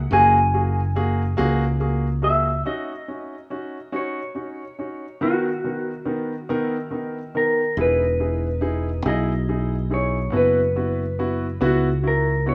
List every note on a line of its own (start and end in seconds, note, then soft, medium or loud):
0.11 1.34 F#1 medium
0.11 0.37 A#3 medium
0.11 0.37 F#4 medium
0.11 0.37 G#4 medium
0.11 1.78 G#5 loud
0.54 0.79 A#3 medium
0.54 0.79 F#4 medium
0.54 0.80 G#4 medium
0.96 1.21 A#3 medium
0.96 1.22 F#4 medium
0.96 1.22 G#4 medium
1.37 2.62 C#2 medium
1.37 1.63 A#3 medium
1.37 1.64 F#4 medium
1.37 1.64 G#4 loud
1.80 2.06 A#3 medium
1.80 2.06 F#4 medium
1.80 2.06 G#4 medium
2.22 2.48 A#3 medium
2.22 2.49 F#4 medium
2.22 2.49 G#4 medium
2.22 2.66 E5 medium
2.65 2.91 C#4 medium
2.65 2.91 D#4 medium
2.65 2.92 F#4 medium
2.65 3.96 D#5 medium
3.08 3.34 C#4 medium
3.08 3.34 D#4 soft
3.08 3.34 F#4 medium
3.50 3.76 C#4 medium
3.50 3.77 D#4 medium
3.50 3.77 F#4 medium
3.92 4.19 C#4 medium
3.92 4.19 D#4 medium
3.92 4.19 F#4 medium
3.92 5.26 C#5 medium
4.35 4.61 C#4 medium
4.35 4.62 D#4 medium
4.35 4.62 F#4 medium
4.79 5.05 C#4 medium
4.79 5.05 D#4 medium
4.79 5.05 F#4 medium
5.21 5.47 D#3 medium
5.21 5.47 B3 medium
5.21 5.47 D#4 medium
5.21 6.65 F#4 medium
5.21 5.47 A#4 medium
5.64 5.90 D#3 medium
5.64 5.90 B3 soft
5.64 5.90 D#4 soft
5.64 5.90 A#4 medium
6.05 6.32 D#3 medium
6.05 6.32 B3 medium
6.05 6.32 D#4 medium
6.05 6.33 A#4 medium
6.49 6.75 D#3 medium
6.49 6.75 B3 medium
6.49 6.75 D#4 medium
6.49 6.76 A#4 medium
6.65 7.42 E4 medium
6.90 7.17 D#3 medium
6.90 7.18 B3 medium
6.90 7.18 D#4 medium
6.90 7.18 A#4 medium
7.34 7.60 D#3 medium
7.34 7.61 B3 medium
7.34 7.61 D#4 medium
7.34 7.61 A#4 medium
7.34 7.75 A#4 medium
7.77 9.01 E1 loud
7.77 8.03 D#4 medium
7.77 8.03 E4 medium
7.77 8.04 G#4 medium
7.81 9.11 B4 medium
8.20 8.46 D#4 medium
8.20 8.46 E4 medium
8.20 8.46 G#4 medium
8.61 8.88 D#4 medium
8.61 8.88 E4 medium
8.61 8.88 G#4 medium
9.05 10.34 B1 loud
9.05 9.31 D#4 medium
9.05 9.31 E4 medium
9.05 9.32 G#4 medium
9.05 9.93 D#5 medium
9.49 9.74 D#4 medium
9.49 9.75 E4 soft
9.49 9.74 G#4 medium
9.90 10.16 D#4 medium
9.90 10.17 E4 medium
9.90 10.17 G#4 medium
9.90 10.36 C#5 medium
10.32 11.57 F#1 medium
10.32 10.59 B3 medium
10.32 10.59 E4 medium
10.32 10.59 F#4 medium
10.37 11.59 B4 medium
10.76 11.02 B3 medium
10.76 11.02 E4 medium
10.76 11.02 F#4 medium
11.19 11.45 B3 medium
11.19 11.45 E4 medium
11.19 11.45 F#4 medium
11.61 12.55 C#2 medium
11.61 11.87 B3 medium
11.61 11.87 E4 medium
11.61 11.87 F#4 loud
11.65 12.07 F#4 medium
12.03 12.30 E4 medium
12.03 12.30 F#4 medium
12.07 12.45 A#4 medium
12.46 12.55 B3 medium
12.46 12.55 E4 medium
12.46 12.55 F#4 medium
12.46 12.55 C#5 medium